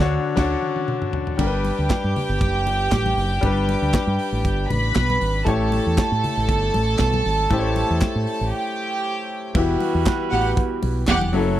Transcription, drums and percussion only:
0.00 kick loud
0.37 kick medium
0.37 snare loud
0.37 crash medium
0.62 high tom medium
0.76 high tom medium
0.88 mid tom medium
1.02 mid tom medium
1.13 floor tom medium
1.27 floor tom medium
1.39 kick loud
1.39 crash medium
1.39 muted conga soft
1.65 open hi-hat medium
1.65 muted conga soft
1.90 kick medium
1.90 snare loud
1.90 clap medium
1.90 closed hi-hat medium
1.90 high conga medium
2.16 open hi-hat medium
2.16 low conga medium
2.41 kick loud
2.41 closed hi-hat medium
2.41 muted conga soft
2.67 open hi-hat soft
2.67 muted conga soft
2.91 kick medium
2.91 snare loud
2.91 clap medium
2.91 closed hi-hat medium
2.91 high conga medium
3.06 high conga medium
3.17 open hi-hat medium
3.43 kick loud
3.43 closed hi-hat medium
3.43 muted conga soft
3.69 open hi-hat medium
3.69 muted conga soft
3.94 kick loud
3.94 snare loud
3.94 clap medium
3.94 closed hi-hat medium
3.94 high conga medium
4.19 open hi-hat medium
4.45 kick loud
4.45 closed hi-hat medium
4.45 muted conga soft
4.70 open hi-hat medium
4.70 muted conga medium
4.70 low conga medium
4.95 kick medium
4.95 snare loud
4.95 clap medium
4.95 closed hi-hat medium
4.95 high conga medium
5.10 high conga medium
5.21 open hi-hat medium
5.46 kick loud
5.46 closed hi-hat soft
5.46 muted conga soft
5.72 open hi-hat medium
5.72 muted conga soft
5.98 kick loud
5.98 snare loud
5.98 clap medium
5.98 closed hi-hat medium
5.98 high conga medium
6.24 open hi-hat medium
6.24 low conga medium
6.49 kick loud
6.49 closed hi-hat medium
6.49 muted conga soft
6.74 open hi-hat medium
6.74 muted conga medium
6.98 kick medium
6.98 snare loud
6.98 clap medium
6.98 closed hi-hat medium
6.98 high conga medium
7.14 high conga medium
7.25 open hi-hat medium
7.50 kick loud
7.50 closed hi-hat medium
7.50 muted conga soft
7.76 open hi-hat medium
7.76 muted conga soft
8.01 kick loud
8.01 snare loud
8.01 clap loud
8.01 closed hi-hat medium
8.01 high conga medium
8.27 open hi-hat medium
9.55 kick loud
9.55 crash medium
9.55 muted conga soft
9.80 open hi-hat medium
9.80 muted conga soft
10.06 kick loud
10.06 snare loud
10.06 clap loud
10.06 closed hi-hat medium
10.06 high conga medium
10.32 open hi-hat medium
10.57 kick loud
10.57 closed hi-hat medium
10.57 muted conga soft
10.83 open hi-hat medium
10.83 muted conga medium
11.07 kick loud
11.07 snare loud
11.07 clap medium
11.07 closed hi-hat medium
11.07 high conga medium
11.21 high conga medium
11.33 open hi-hat medium
11.33 high conga soft

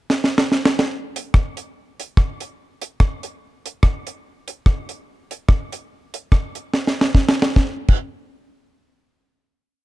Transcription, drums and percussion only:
0.10 snare medium
0.24 snare medium
0.38 snare medium
0.52 snare medium
0.65 snare medium
0.79 snare medium
1.16 closed hi-hat loud
1.34 kick loud
1.34 cross-stick loud
1.57 closed hi-hat medium
2.00 closed hi-hat medium
2.17 kick loud
2.17 cross-stick loud
2.41 closed hi-hat medium
2.82 closed hi-hat medium
3.00 kick medium
3.00 cross-stick loud
3.23 closed hi-hat medium
3.66 closed hi-hat medium
3.83 kick medium
3.83 cross-stick loud
4.07 closed hi-hat medium
4.48 closed hi-hat loud
4.66 kick loud
4.66 cross-stick loud
4.89 closed hi-hat medium
5.31 closed hi-hat medium
5.49 kick loud
5.49 cross-stick loud
5.72 closed hi-hat medium
6.14 closed hi-hat medium
6.32 kick loud
6.32 cross-stick loud
6.55 closed hi-hat medium
6.74 snare medium
6.87 snare medium
7.01 snare medium
7.15 kick medium
7.15 snare medium
7.29 snare medium
7.42 snare medium
7.56 kick loud
7.56 snare medium
7.88 kick medium
7.88 crash medium

